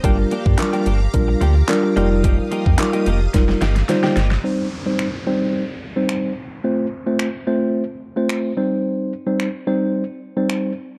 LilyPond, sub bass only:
\new Staff \with { instrumentName = "Sub bass" } { \clef bass \time 4/4 \key c \dorian \tempo 4 = 109 g,,8 r16 g,16 r8 g,,8 bes,,8 d,8 r8 f,,8~ | f,,8 r16 f,16 r8 f,,8 f,,8 g,,8 r8 g,,8 | r1 | r1 |
r1 | }